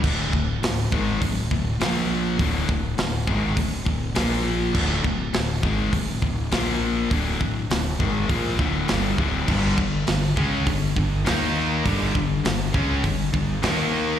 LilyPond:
<<
  \new Staff \with { instrumentName = "Distorted electric guitar" } { \clef bass \time 4/4 \key d \minor \tempo 4 = 101 r1 | r1 | r1 | r1 |
<g, d g>8 <g, d>8 <g, d>8 <cis gis cis'>8 <g, d>8 <g, d>8 <ees bes ees'>4 | <g, d g>8 <g, d>8 <g, d>8 <cis gis cis'>8 <g, d>8 <g, d>8 <ees bes ees'>4 | }
  \new Staff \with { instrumentName = "Distorted electric guitar" } { \clef bass \time 4/4 \key d \minor <d, a, d>8 <d, a,>8 <d, a,>8 <gis, ees gis>8 <d, a,>8 <d, a,>8 <bes, f bes>4 | <d, a, d>8 <d, a,>8 <d, a,>8 <gis, ees gis>8 <d, a,>8 <d, a,>8 <bes, f bes>4 | <d, a, d>8 <d, a,>8 <d, a,>8 <gis, ees gis>8 <d, a,>8 <d, a,>8 <bes, f bes>4 | <d, a, d>8 <d, a,>8 <d, a,>8 <gis, ees gis>8 <bes, f bes>8 <d, a, d>8 <g, d g>8 <d, a, d>8 |
<g, d g>8 <g, d>8 <g, d>8 <cis gis cis'>8 <g, d>8 <g, d>8 <ees bes ees'>4 | <g, d g>8 <g, d>8 <g, d>8 <cis gis cis'>8 <g, d>8 <g, d>8 <ees bes ees'>4 | }
  \new Staff \with { instrumentName = "Distorted electric guitar" } { \clef bass \time 4/4 \key d \minor <d, a, d>8 <d, a,>8 <d, a,>8 <gis, ees gis>8 <d, a,>8 <d, a,>8 <bes, f bes>4 | <d, a, d>8 <d, a,>8 <d, a,>8 <gis, ees gis>8 <d, a,>8 <d, a,>8 <bes, f bes>4 | <d, a, d>8 <d, a,>8 <d, a,>8 <gis, ees gis>8 <d, a,>8 <d, a,>8 <bes, f bes>4 | <d, a, d>8 <d, a,>8 <d, a,>8 <gis, ees gis>8 <bes, f bes>8 <d, a, d>8 <g, d g>8 <d, a, d>8 |
<g, d g>8 <g, d>8 <g, d>8 <cis gis cis'>8 <g, d>8 <g, d>8 <ees bes ees'>4 | <g, d g>8 <g, d>8 <g, d>8 <cis gis cis'>8 <g, d>8 <g, d>8 <ees bes ees'>4 | }
  \new Staff \with { instrumentName = "Upright bass" } { \clef bass \time 4/4 \key d \minor d,,8 d,,8 d,,8 gis,,8 d,,8 d,,8 bes,,4 | d,,8 d,,8 d,,8 gis,,8 d,,8 d,,8 bes,,4 | d,,8 d,,8 d,,8 gis,,8 d,,8 d,,8 bes,,4 | d,,8 d,,8 d,,8 gis,,8 bes,,8 d,,8 g,,8 d,,8 |
g,,8 g,,8 g,,8 cis,8 g,,8 g,,8 ees,4 | g,,8 g,,8 g,,8 cis,8 g,,8 g,,8 ees,4 | }
  \new DrumStaff \with { instrumentName = "Drums" } \drummode { \time 4/4 <cymc bd>8 bd8 <hho sn>8 bd8 <hho bd>8 bd8 <hho sn>4 | <hho bd>8 bd8 <hho sn>8 bd8 <hho bd>8 bd8 <hho sn>4 | <cymc bd>8 bd8 <hho sn>8 bd8 <hho bd>8 bd8 <hho sn>4 | <hho bd>8 bd8 <hho sn>8 bd8 <hho bd>8 bd8 <hho sn>8 bd8 |
<cymc bd>8 bd8 <hho sn>8 bd8 <hho bd>8 bd8 <hho sn>4 | <hho bd>8 bd8 <hho sn>8 bd8 <hho bd>8 bd8 <hho sn>4 | }
>>